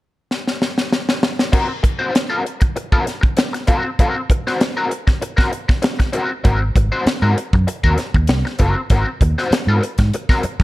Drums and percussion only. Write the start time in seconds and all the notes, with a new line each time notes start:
0.31 snare
0.47 snare
0.62 snare
0.78 snare
0.93 snare
1.09 snare
1.23 snare
1.39 snare
1.53 kick, crash
1.84 kick, closed hi-hat
2.15 snare, closed hi-hat
2.47 closed hi-hat
2.61 kick, closed hi-hat
2.76 closed hi-hat
2.92 kick
3.07 snare, closed hi-hat
3.23 kick
3.37 snare, closed hi-hat
3.54 snare, closed hi-hat
3.67 kick, closed hi-hat
3.99 kick, closed hi-hat
4.30 kick, closed hi-hat
4.47 snare
4.61 snare, closed hi-hat
4.91 closed hi-hat
5.08 kick, snare
5.22 closed hi-hat
5.38 kick, snare
5.53 closed hi-hat
5.69 kick, snare
5.82 snare, closed hi-hat
6.00 kick, snare, closed hi-hat
6.13 closed hi-hat
6.45 kick, closed hi-hat
6.76 kick, closed hi-hat
7.07 snare, closed hi-hat
7.38 closed hi-hat
7.53 kick
7.68 closed hi-hat
7.84 kick
7.98 snare, closed hi-hat
8.14 kick
8.27 snare, closed hi-hat
8.46 snare
8.59 kick, closed hi-hat
8.90 kick, closed hi-hat
9.21 kick, closed hi-hat
9.38 snare
9.52 snare, closed hi-hat
9.83 closed hi-hat
9.98 kick, snare, closed hi-hat
10.14 closed hi-hat
10.29 kick, snare
10.43 closed hi-hat
10.60 kick